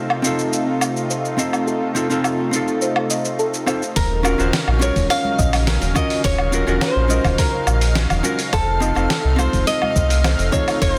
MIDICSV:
0, 0, Header, 1, 7, 480
1, 0, Start_track
1, 0, Tempo, 571429
1, 1407, Time_signature, 4, 2, 24, 8
1, 9227, End_track
2, 0, Start_track
2, 0, Title_t, "Nylon-string guitar"
2, 0, Program_c, 0, 24
2, 3330, Note_on_c, 0, 70, 99
2, 4048, Note_off_c, 0, 70, 0
2, 4051, Note_on_c, 0, 73, 90
2, 4283, Note_off_c, 0, 73, 0
2, 4287, Note_on_c, 0, 77, 107
2, 5006, Note_off_c, 0, 77, 0
2, 5009, Note_on_c, 0, 75, 95
2, 5243, Note_off_c, 0, 75, 0
2, 5246, Note_on_c, 0, 73, 109
2, 5729, Note_off_c, 0, 73, 0
2, 5732, Note_on_c, 0, 72, 87
2, 6214, Note_on_c, 0, 70, 80
2, 6224, Note_off_c, 0, 72, 0
2, 6657, Note_off_c, 0, 70, 0
2, 7168, Note_on_c, 0, 69, 103
2, 7886, Note_on_c, 0, 72, 95
2, 7909, Note_off_c, 0, 69, 0
2, 8110, Note_off_c, 0, 72, 0
2, 8124, Note_on_c, 0, 75, 105
2, 8837, Note_off_c, 0, 75, 0
2, 8840, Note_on_c, 0, 73, 99
2, 9083, Note_off_c, 0, 73, 0
2, 9086, Note_on_c, 0, 72, 106
2, 9227, Note_off_c, 0, 72, 0
2, 9227, End_track
3, 0, Start_track
3, 0, Title_t, "Synth pluck"
3, 0, Program_c, 1, 84
3, 0, Note_on_c, 1, 69, 73
3, 98, Note_off_c, 1, 69, 0
3, 927, Note_on_c, 1, 72, 72
3, 1058, Note_off_c, 1, 72, 0
3, 1165, Note_on_c, 1, 75, 73
3, 1382, Note_off_c, 1, 75, 0
3, 1405, Note_on_c, 1, 69, 78
3, 1537, Note_off_c, 1, 69, 0
3, 2367, Note_on_c, 1, 72, 78
3, 2498, Note_off_c, 1, 72, 0
3, 2608, Note_on_c, 1, 75, 72
3, 2835, Note_off_c, 1, 75, 0
3, 2848, Note_on_c, 1, 69, 67
3, 3075, Note_off_c, 1, 69, 0
3, 3088, Note_on_c, 1, 72, 68
3, 3304, Note_off_c, 1, 72, 0
3, 3329, Note_on_c, 1, 70, 79
3, 3459, Note_off_c, 1, 70, 0
3, 4284, Note_on_c, 1, 73, 81
3, 4417, Note_off_c, 1, 73, 0
3, 4525, Note_on_c, 1, 75, 79
3, 4742, Note_off_c, 1, 75, 0
3, 4767, Note_on_c, 1, 70, 73
3, 4898, Note_off_c, 1, 70, 0
3, 5724, Note_on_c, 1, 73, 78
3, 5857, Note_off_c, 1, 73, 0
3, 5965, Note_on_c, 1, 75, 82
3, 6182, Note_off_c, 1, 75, 0
3, 6204, Note_on_c, 1, 70, 80
3, 6337, Note_off_c, 1, 70, 0
3, 7164, Note_on_c, 1, 72, 88
3, 7297, Note_off_c, 1, 72, 0
3, 7405, Note_on_c, 1, 75, 78
3, 7622, Note_off_c, 1, 75, 0
3, 7645, Note_on_c, 1, 69, 77
3, 7778, Note_off_c, 1, 69, 0
3, 8605, Note_on_c, 1, 72, 76
3, 8737, Note_off_c, 1, 72, 0
3, 8845, Note_on_c, 1, 75, 73
3, 9062, Note_off_c, 1, 75, 0
3, 9087, Note_on_c, 1, 69, 84
3, 9218, Note_off_c, 1, 69, 0
3, 9227, End_track
4, 0, Start_track
4, 0, Title_t, "Hollow-body jazz guitar"
4, 0, Program_c, 2, 26
4, 187, Note_on_c, 2, 60, 79
4, 200, Note_on_c, 2, 63, 70
4, 212, Note_on_c, 2, 65, 70
4, 227, Note_on_c, 2, 69, 92
4, 1129, Note_off_c, 2, 60, 0
4, 1135, Note_off_c, 2, 63, 0
4, 1141, Note_off_c, 2, 65, 0
4, 1148, Note_off_c, 2, 69, 0
4, 1156, Note_on_c, 2, 60, 85
4, 1163, Note_on_c, 2, 63, 77
4, 1170, Note_on_c, 2, 65, 78
4, 1176, Note_on_c, 2, 69, 89
4, 1613, Note_off_c, 2, 60, 0
4, 1617, Note_off_c, 2, 63, 0
4, 1620, Note_off_c, 2, 65, 0
4, 1623, Note_off_c, 2, 69, 0
4, 1636, Note_on_c, 2, 60, 88
4, 1641, Note_on_c, 2, 63, 78
4, 1647, Note_on_c, 2, 65, 75
4, 1654, Note_on_c, 2, 69, 99
4, 1734, Note_off_c, 2, 60, 0
4, 1737, Note_off_c, 2, 63, 0
4, 1740, Note_off_c, 2, 65, 0
4, 1743, Note_off_c, 2, 69, 0
4, 1761, Note_on_c, 2, 60, 86
4, 1768, Note_on_c, 2, 63, 75
4, 1773, Note_on_c, 2, 65, 76
4, 1780, Note_on_c, 2, 69, 91
4, 2094, Note_off_c, 2, 60, 0
4, 2098, Note_off_c, 2, 63, 0
4, 2101, Note_off_c, 2, 65, 0
4, 2104, Note_off_c, 2, 69, 0
4, 2111, Note_on_c, 2, 60, 70
4, 2124, Note_on_c, 2, 63, 59
4, 2137, Note_on_c, 2, 65, 62
4, 2149, Note_on_c, 2, 69, 75
4, 3050, Note_off_c, 2, 60, 0
4, 3057, Note_off_c, 2, 63, 0
4, 3063, Note_off_c, 2, 65, 0
4, 3070, Note_off_c, 2, 69, 0
4, 3078, Note_on_c, 2, 60, 75
4, 3084, Note_on_c, 2, 63, 67
4, 3091, Note_on_c, 2, 65, 67
4, 3098, Note_on_c, 2, 69, 88
4, 3201, Note_off_c, 2, 60, 0
4, 3204, Note_off_c, 2, 63, 0
4, 3207, Note_off_c, 2, 65, 0
4, 3211, Note_off_c, 2, 69, 0
4, 3555, Note_on_c, 2, 61, 94
4, 3563, Note_on_c, 2, 65, 88
4, 3567, Note_on_c, 2, 66, 84
4, 3574, Note_on_c, 2, 70, 104
4, 3654, Note_off_c, 2, 61, 0
4, 3658, Note_off_c, 2, 65, 0
4, 3660, Note_off_c, 2, 66, 0
4, 3663, Note_off_c, 2, 70, 0
4, 3680, Note_on_c, 2, 61, 81
4, 3686, Note_on_c, 2, 65, 76
4, 3693, Note_on_c, 2, 66, 77
4, 3700, Note_on_c, 2, 72, 93
4, 3798, Note_off_c, 2, 61, 0
4, 3801, Note_off_c, 2, 65, 0
4, 3805, Note_off_c, 2, 66, 0
4, 3809, Note_off_c, 2, 72, 0
4, 4027, Note_on_c, 2, 61, 89
4, 4040, Note_on_c, 2, 65, 83
4, 4053, Note_on_c, 2, 66, 78
4, 4065, Note_on_c, 2, 70, 102
4, 4969, Note_off_c, 2, 61, 0
4, 4975, Note_off_c, 2, 65, 0
4, 4982, Note_off_c, 2, 66, 0
4, 4988, Note_off_c, 2, 70, 0
4, 4996, Note_on_c, 2, 61, 94
4, 5003, Note_on_c, 2, 65, 88
4, 5010, Note_on_c, 2, 66, 83
4, 5015, Note_on_c, 2, 70, 99
4, 5453, Note_off_c, 2, 61, 0
4, 5456, Note_off_c, 2, 65, 0
4, 5460, Note_off_c, 2, 66, 0
4, 5463, Note_off_c, 2, 70, 0
4, 5478, Note_on_c, 2, 61, 99
4, 5485, Note_on_c, 2, 65, 90
4, 5490, Note_on_c, 2, 66, 89
4, 5497, Note_on_c, 2, 70, 102
4, 5575, Note_off_c, 2, 61, 0
4, 5579, Note_off_c, 2, 65, 0
4, 5581, Note_off_c, 2, 66, 0
4, 5585, Note_off_c, 2, 70, 0
4, 5600, Note_on_c, 2, 61, 86
4, 5605, Note_on_c, 2, 65, 85
4, 5612, Note_on_c, 2, 66, 84
4, 5618, Note_on_c, 2, 70, 98
4, 5934, Note_off_c, 2, 61, 0
4, 5937, Note_off_c, 2, 65, 0
4, 5940, Note_off_c, 2, 66, 0
4, 5943, Note_off_c, 2, 70, 0
4, 5947, Note_on_c, 2, 61, 78
4, 5960, Note_on_c, 2, 65, 68
4, 5972, Note_on_c, 2, 66, 67
4, 5986, Note_on_c, 2, 70, 82
4, 6888, Note_off_c, 2, 61, 0
4, 6895, Note_off_c, 2, 65, 0
4, 6901, Note_off_c, 2, 66, 0
4, 6908, Note_off_c, 2, 70, 0
4, 6913, Note_on_c, 2, 61, 80
4, 6919, Note_on_c, 2, 65, 76
4, 6925, Note_on_c, 2, 66, 76
4, 6932, Note_on_c, 2, 70, 89
4, 7038, Note_off_c, 2, 61, 0
4, 7041, Note_off_c, 2, 65, 0
4, 7044, Note_off_c, 2, 66, 0
4, 7048, Note_off_c, 2, 70, 0
4, 7395, Note_on_c, 2, 60, 99
4, 7401, Note_on_c, 2, 63, 87
4, 7408, Note_on_c, 2, 65, 93
4, 7413, Note_on_c, 2, 69, 108
4, 7494, Note_off_c, 2, 60, 0
4, 7497, Note_off_c, 2, 63, 0
4, 7500, Note_off_c, 2, 65, 0
4, 7503, Note_off_c, 2, 69, 0
4, 7517, Note_on_c, 2, 60, 88
4, 7523, Note_on_c, 2, 63, 77
4, 7530, Note_on_c, 2, 65, 76
4, 7536, Note_on_c, 2, 72, 93
4, 7637, Note_off_c, 2, 60, 0
4, 7640, Note_off_c, 2, 63, 0
4, 7643, Note_off_c, 2, 65, 0
4, 7646, Note_off_c, 2, 72, 0
4, 7863, Note_on_c, 2, 60, 89
4, 7877, Note_on_c, 2, 63, 79
4, 7890, Note_on_c, 2, 65, 81
4, 7903, Note_on_c, 2, 69, 103
4, 8807, Note_off_c, 2, 60, 0
4, 8814, Note_off_c, 2, 63, 0
4, 8820, Note_off_c, 2, 65, 0
4, 8826, Note_off_c, 2, 69, 0
4, 8836, Note_on_c, 2, 60, 91
4, 8842, Note_on_c, 2, 63, 88
4, 8848, Note_on_c, 2, 65, 83
4, 8855, Note_on_c, 2, 69, 107
4, 9227, Note_off_c, 2, 60, 0
4, 9227, Note_off_c, 2, 63, 0
4, 9227, Note_off_c, 2, 65, 0
4, 9227, Note_off_c, 2, 69, 0
4, 9227, End_track
5, 0, Start_track
5, 0, Title_t, "Analog synth pad"
5, 0, Program_c, 3, 89
5, 0, Note_on_c, 3, 48, 70
5, 0, Note_on_c, 3, 57, 72
5, 0, Note_on_c, 3, 63, 70
5, 0, Note_on_c, 3, 65, 84
5, 3290, Note_off_c, 3, 65, 0
5, 3291, Note_off_c, 3, 48, 0
5, 3292, Note_off_c, 3, 57, 0
5, 3293, Note_off_c, 3, 63, 0
5, 3328, Note_on_c, 3, 54, 77
5, 3328, Note_on_c, 3, 77, 91
5, 3330, Note_on_c, 3, 49, 77
5, 3330, Note_on_c, 3, 63, 71
5, 7134, Note_off_c, 3, 54, 0
5, 7135, Note_off_c, 3, 49, 0
5, 7162, Note_on_c, 3, 48, 83
5, 7165, Note_on_c, 3, 57, 75
5, 9227, Note_off_c, 3, 48, 0
5, 9227, Note_off_c, 3, 57, 0
5, 9227, Note_off_c, 3, 63, 0
5, 9227, Note_off_c, 3, 77, 0
5, 9227, End_track
6, 0, Start_track
6, 0, Title_t, "Analog synth bass"
6, 0, Program_c, 4, 38
6, 3329, Note_on_c, 4, 27, 98
6, 3658, Note_off_c, 4, 27, 0
6, 3689, Note_on_c, 4, 27, 83
6, 3787, Note_off_c, 4, 27, 0
6, 3927, Note_on_c, 4, 34, 83
6, 4126, Note_off_c, 4, 34, 0
6, 4169, Note_on_c, 4, 27, 96
6, 4267, Note_off_c, 4, 27, 0
6, 4528, Note_on_c, 4, 34, 85
6, 4857, Note_off_c, 4, 34, 0
6, 4886, Note_on_c, 4, 27, 86
6, 4986, Note_off_c, 4, 27, 0
6, 5245, Note_on_c, 4, 27, 94
6, 5575, Note_off_c, 4, 27, 0
6, 5604, Note_on_c, 4, 27, 86
6, 5705, Note_off_c, 4, 27, 0
6, 5846, Note_on_c, 4, 34, 86
6, 6045, Note_off_c, 4, 34, 0
6, 6086, Note_on_c, 4, 27, 101
6, 6186, Note_off_c, 4, 27, 0
6, 6442, Note_on_c, 4, 34, 90
6, 6774, Note_off_c, 4, 34, 0
6, 6807, Note_on_c, 4, 27, 89
6, 6906, Note_off_c, 4, 27, 0
6, 7165, Note_on_c, 4, 29, 95
6, 7495, Note_off_c, 4, 29, 0
6, 7525, Note_on_c, 4, 29, 89
6, 7625, Note_off_c, 4, 29, 0
6, 7766, Note_on_c, 4, 36, 86
6, 7965, Note_off_c, 4, 36, 0
6, 8007, Note_on_c, 4, 29, 96
6, 8106, Note_off_c, 4, 29, 0
6, 8365, Note_on_c, 4, 36, 91
6, 8696, Note_off_c, 4, 36, 0
6, 8725, Note_on_c, 4, 29, 84
6, 8825, Note_off_c, 4, 29, 0
6, 9085, Note_on_c, 4, 29, 100
6, 9227, Note_off_c, 4, 29, 0
6, 9227, End_track
7, 0, Start_track
7, 0, Title_t, "Drums"
7, 85, Note_on_c, 9, 77, 62
7, 169, Note_off_c, 9, 77, 0
7, 204, Note_on_c, 9, 69, 73
7, 288, Note_off_c, 9, 69, 0
7, 325, Note_on_c, 9, 69, 31
7, 409, Note_off_c, 9, 69, 0
7, 445, Note_on_c, 9, 69, 46
7, 529, Note_off_c, 9, 69, 0
7, 683, Note_on_c, 9, 77, 67
7, 685, Note_on_c, 9, 69, 72
7, 767, Note_off_c, 9, 77, 0
7, 769, Note_off_c, 9, 69, 0
7, 810, Note_on_c, 9, 69, 33
7, 894, Note_off_c, 9, 69, 0
7, 926, Note_on_c, 9, 69, 39
7, 1010, Note_off_c, 9, 69, 0
7, 1050, Note_on_c, 9, 69, 31
7, 1134, Note_off_c, 9, 69, 0
7, 1167, Note_on_c, 9, 69, 72
7, 1251, Note_off_c, 9, 69, 0
7, 1287, Note_on_c, 9, 77, 63
7, 1289, Note_on_c, 9, 69, 30
7, 1371, Note_off_c, 9, 77, 0
7, 1373, Note_off_c, 9, 69, 0
7, 1406, Note_on_c, 9, 69, 39
7, 1490, Note_off_c, 9, 69, 0
7, 1646, Note_on_c, 9, 69, 72
7, 1730, Note_off_c, 9, 69, 0
7, 1767, Note_on_c, 9, 69, 28
7, 1851, Note_off_c, 9, 69, 0
7, 1884, Note_on_c, 9, 77, 70
7, 1886, Note_on_c, 9, 69, 42
7, 1968, Note_off_c, 9, 77, 0
7, 1970, Note_off_c, 9, 69, 0
7, 2126, Note_on_c, 9, 69, 71
7, 2210, Note_off_c, 9, 69, 0
7, 2249, Note_on_c, 9, 69, 34
7, 2333, Note_off_c, 9, 69, 0
7, 2364, Note_on_c, 9, 69, 45
7, 2448, Note_off_c, 9, 69, 0
7, 2486, Note_on_c, 9, 77, 65
7, 2570, Note_off_c, 9, 77, 0
7, 2606, Note_on_c, 9, 69, 74
7, 2690, Note_off_c, 9, 69, 0
7, 2728, Note_on_c, 9, 69, 34
7, 2812, Note_off_c, 9, 69, 0
7, 2848, Note_on_c, 9, 69, 40
7, 2932, Note_off_c, 9, 69, 0
7, 2971, Note_on_c, 9, 69, 31
7, 3055, Note_off_c, 9, 69, 0
7, 3085, Note_on_c, 9, 77, 64
7, 3087, Note_on_c, 9, 69, 74
7, 3169, Note_off_c, 9, 77, 0
7, 3171, Note_off_c, 9, 69, 0
7, 3210, Note_on_c, 9, 69, 30
7, 3294, Note_off_c, 9, 69, 0
7, 3328, Note_on_c, 9, 36, 111
7, 3328, Note_on_c, 9, 46, 69
7, 3330, Note_on_c, 9, 69, 43
7, 3412, Note_off_c, 9, 36, 0
7, 3412, Note_off_c, 9, 46, 0
7, 3414, Note_off_c, 9, 69, 0
7, 3567, Note_on_c, 9, 77, 80
7, 3569, Note_on_c, 9, 69, 75
7, 3651, Note_off_c, 9, 77, 0
7, 3653, Note_off_c, 9, 69, 0
7, 3692, Note_on_c, 9, 69, 34
7, 3776, Note_off_c, 9, 69, 0
7, 3808, Note_on_c, 9, 38, 102
7, 3808, Note_on_c, 9, 46, 74
7, 3810, Note_on_c, 9, 69, 43
7, 3892, Note_off_c, 9, 38, 0
7, 3892, Note_off_c, 9, 46, 0
7, 3894, Note_off_c, 9, 69, 0
7, 3929, Note_on_c, 9, 77, 75
7, 4013, Note_off_c, 9, 77, 0
7, 4047, Note_on_c, 9, 69, 72
7, 4048, Note_on_c, 9, 63, 72
7, 4131, Note_off_c, 9, 69, 0
7, 4132, Note_off_c, 9, 63, 0
7, 4163, Note_on_c, 9, 64, 72
7, 4165, Note_on_c, 9, 63, 80
7, 4167, Note_on_c, 9, 46, 35
7, 4169, Note_on_c, 9, 36, 59
7, 4169, Note_on_c, 9, 69, 35
7, 4247, Note_off_c, 9, 64, 0
7, 4249, Note_off_c, 9, 63, 0
7, 4251, Note_off_c, 9, 46, 0
7, 4253, Note_off_c, 9, 36, 0
7, 4253, Note_off_c, 9, 69, 0
7, 4285, Note_on_c, 9, 46, 73
7, 4285, Note_on_c, 9, 77, 81
7, 4287, Note_on_c, 9, 69, 49
7, 4369, Note_off_c, 9, 46, 0
7, 4369, Note_off_c, 9, 77, 0
7, 4371, Note_off_c, 9, 69, 0
7, 4406, Note_on_c, 9, 63, 65
7, 4490, Note_off_c, 9, 63, 0
7, 4526, Note_on_c, 9, 69, 74
7, 4527, Note_on_c, 9, 36, 109
7, 4610, Note_off_c, 9, 69, 0
7, 4611, Note_off_c, 9, 36, 0
7, 4647, Note_on_c, 9, 46, 52
7, 4647, Note_on_c, 9, 77, 79
7, 4649, Note_on_c, 9, 69, 36
7, 4731, Note_off_c, 9, 46, 0
7, 4731, Note_off_c, 9, 77, 0
7, 4733, Note_off_c, 9, 69, 0
7, 4764, Note_on_c, 9, 38, 101
7, 4764, Note_on_c, 9, 46, 69
7, 4766, Note_on_c, 9, 69, 45
7, 4848, Note_off_c, 9, 38, 0
7, 4848, Note_off_c, 9, 46, 0
7, 4850, Note_off_c, 9, 69, 0
7, 4882, Note_on_c, 9, 60, 57
7, 4887, Note_on_c, 9, 46, 33
7, 4889, Note_on_c, 9, 69, 32
7, 4966, Note_off_c, 9, 60, 0
7, 4971, Note_off_c, 9, 46, 0
7, 4973, Note_off_c, 9, 69, 0
7, 5003, Note_on_c, 9, 64, 81
7, 5003, Note_on_c, 9, 77, 79
7, 5005, Note_on_c, 9, 69, 76
7, 5006, Note_on_c, 9, 36, 105
7, 5087, Note_off_c, 9, 64, 0
7, 5087, Note_off_c, 9, 77, 0
7, 5089, Note_off_c, 9, 69, 0
7, 5090, Note_off_c, 9, 36, 0
7, 5126, Note_on_c, 9, 46, 47
7, 5128, Note_on_c, 9, 69, 35
7, 5210, Note_off_c, 9, 46, 0
7, 5212, Note_off_c, 9, 69, 0
7, 5243, Note_on_c, 9, 46, 66
7, 5245, Note_on_c, 9, 36, 122
7, 5245, Note_on_c, 9, 69, 46
7, 5327, Note_off_c, 9, 46, 0
7, 5329, Note_off_c, 9, 36, 0
7, 5329, Note_off_c, 9, 69, 0
7, 5363, Note_on_c, 9, 77, 72
7, 5447, Note_off_c, 9, 77, 0
7, 5483, Note_on_c, 9, 69, 82
7, 5567, Note_off_c, 9, 69, 0
7, 5608, Note_on_c, 9, 69, 34
7, 5692, Note_off_c, 9, 69, 0
7, 5723, Note_on_c, 9, 38, 107
7, 5723, Note_on_c, 9, 46, 71
7, 5723, Note_on_c, 9, 77, 75
7, 5725, Note_on_c, 9, 69, 45
7, 5807, Note_off_c, 9, 38, 0
7, 5807, Note_off_c, 9, 46, 0
7, 5807, Note_off_c, 9, 77, 0
7, 5809, Note_off_c, 9, 69, 0
7, 5958, Note_on_c, 9, 63, 67
7, 5965, Note_on_c, 9, 69, 80
7, 6042, Note_off_c, 9, 63, 0
7, 6049, Note_off_c, 9, 69, 0
7, 6085, Note_on_c, 9, 64, 81
7, 6086, Note_on_c, 9, 46, 32
7, 6086, Note_on_c, 9, 77, 81
7, 6087, Note_on_c, 9, 36, 61
7, 6088, Note_on_c, 9, 69, 36
7, 6169, Note_off_c, 9, 64, 0
7, 6170, Note_off_c, 9, 46, 0
7, 6170, Note_off_c, 9, 77, 0
7, 6171, Note_off_c, 9, 36, 0
7, 6172, Note_off_c, 9, 69, 0
7, 6202, Note_on_c, 9, 46, 68
7, 6204, Note_on_c, 9, 36, 112
7, 6204, Note_on_c, 9, 69, 53
7, 6286, Note_off_c, 9, 46, 0
7, 6288, Note_off_c, 9, 36, 0
7, 6288, Note_off_c, 9, 69, 0
7, 6442, Note_on_c, 9, 77, 77
7, 6444, Note_on_c, 9, 69, 81
7, 6526, Note_off_c, 9, 77, 0
7, 6528, Note_off_c, 9, 69, 0
7, 6563, Note_on_c, 9, 46, 47
7, 6565, Note_on_c, 9, 69, 37
7, 6647, Note_off_c, 9, 46, 0
7, 6649, Note_off_c, 9, 69, 0
7, 6681, Note_on_c, 9, 38, 104
7, 6681, Note_on_c, 9, 46, 68
7, 6683, Note_on_c, 9, 69, 45
7, 6765, Note_off_c, 9, 38, 0
7, 6765, Note_off_c, 9, 46, 0
7, 6767, Note_off_c, 9, 69, 0
7, 6805, Note_on_c, 9, 46, 31
7, 6805, Note_on_c, 9, 77, 79
7, 6807, Note_on_c, 9, 69, 33
7, 6809, Note_on_c, 9, 64, 82
7, 6889, Note_off_c, 9, 46, 0
7, 6889, Note_off_c, 9, 77, 0
7, 6891, Note_off_c, 9, 69, 0
7, 6893, Note_off_c, 9, 64, 0
7, 6923, Note_on_c, 9, 63, 56
7, 6923, Note_on_c, 9, 69, 81
7, 7007, Note_off_c, 9, 63, 0
7, 7007, Note_off_c, 9, 69, 0
7, 7045, Note_on_c, 9, 46, 44
7, 7047, Note_on_c, 9, 69, 34
7, 7129, Note_off_c, 9, 46, 0
7, 7131, Note_off_c, 9, 69, 0
7, 7164, Note_on_c, 9, 46, 65
7, 7164, Note_on_c, 9, 77, 74
7, 7165, Note_on_c, 9, 36, 122
7, 7166, Note_on_c, 9, 69, 46
7, 7248, Note_off_c, 9, 46, 0
7, 7248, Note_off_c, 9, 77, 0
7, 7249, Note_off_c, 9, 36, 0
7, 7250, Note_off_c, 9, 69, 0
7, 7407, Note_on_c, 9, 69, 82
7, 7491, Note_off_c, 9, 69, 0
7, 7529, Note_on_c, 9, 77, 66
7, 7531, Note_on_c, 9, 69, 33
7, 7613, Note_off_c, 9, 77, 0
7, 7615, Note_off_c, 9, 69, 0
7, 7645, Note_on_c, 9, 38, 103
7, 7645, Note_on_c, 9, 46, 66
7, 7647, Note_on_c, 9, 69, 46
7, 7729, Note_off_c, 9, 38, 0
7, 7729, Note_off_c, 9, 46, 0
7, 7731, Note_off_c, 9, 69, 0
7, 7884, Note_on_c, 9, 63, 63
7, 7884, Note_on_c, 9, 77, 75
7, 7886, Note_on_c, 9, 69, 85
7, 7968, Note_off_c, 9, 63, 0
7, 7968, Note_off_c, 9, 77, 0
7, 7970, Note_off_c, 9, 69, 0
7, 8006, Note_on_c, 9, 64, 66
7, 8007, Note_on_c, 9, 36, 63
7, 8007, Note_on_c, 9, 46, 31
7, 8008, Note_on_c, 9, 63, 78
7, 8009, Note_on_c, 9, 69, 38
7, 8090, Note_off_c, 9, 64, 0
7, 8091, Note_off_c, 9, 36, 0
7, 8091, Note_off_c, 9, 46, 0
7, 8092, Note_off_c, 9, 63, 0
7, 8093, Note_off_c, 9, 69, 0
7, 8124, Note_on_c, 9, 46, 68
7, 8126, Note_on_c, 9, 69, 52
7, 8208, Note_off_c, 9, 46, 0
7, 8210, Note_off_c, 9, 69, 0
7, 8247, Note_on_c, 9, 77, 72
7, 8256, Note_on_c, 9, 63, 64
7, 8331, Note_off_c, 9, 77, 0
7, 8340, Note_off_c, 9, 63, 0
7, 8365, Note_on_c, 9, 36, 113
7, 8366, Note_on_c, 9, 69, 82
7, 8449, Note_off_c, 9, 36, 0
7, 8450, Note_off_c, 9, 69, 0
7, 8486, Note_on_c, 9, 46, 48
7, 8488, Note_on_c, 9, 69, 38
7, 8570, Note_off_c, 9, 46, 0
7, 8572, Note_off_c, 9, 69, 0
7, 8605, Note_on_c, 9, 38, 100
7, 8605, Note_on_c, 9, 46, 62
7, 8605, Note_on_c, 9, 77, 76
7, 8607, Note_on_c, 9, 69, 45
7, 8689, Note_off_c, 9, 38, 0
7, 8689, Note_off_c, 9, 46, 0
7, 8689, Note_off_c, 9, 77, 0
7, 8691, Note_off_c, 9, 69, 0
7, 8728, Note_on_c, 9, 46, 31
7, 8730, Note_on_c, 9, 69, 33
7, 8731, Note_on_c, 9, 60, 46
7, 8812, Note_off_c, 9, 46, 0
7, 8814, Note_off_c, 9, 69, 0
7, 8815, Note_off_c, 9, 60, 0
7, 8846, Note_on_c, 9, 36, 110
7, 8847, Note_on_c, 9, 69, 88
7, 8856, Note_on_c, 9, 64, 77
7, 8930, Note_off_c, 9, 36, 0
7, 8931, Note_off_c, 9, 69, 0
7, 8940, Note_off_c, 9, 64, 0
7, 8969, Note_on_c, 9, 46, 44
7, 8969, Note_on_c, 9, 77, 74
7, 8971, Note_on_c, 9, 69, 33
7, 9053, Note_off_c, 9, 46, 0
7, 9053, Note_off_c, 9, 77, 0
7, 9055, Note_off_c, 9, 69, 0
7, 9086, Note_on_c, 9, 36, 113
7, 9086, Note_on_c, 9, 46, 59
7, 9088, Note_on_c, 9, 69, 46
7, 9170, Note_off_c, 9, 36, 0
7, 9170, Note_off_c, 9, 46, 0
7, 9172, Note_off_c, 9, 69, 0
7, 9227, End_track
0, 0, End_of_file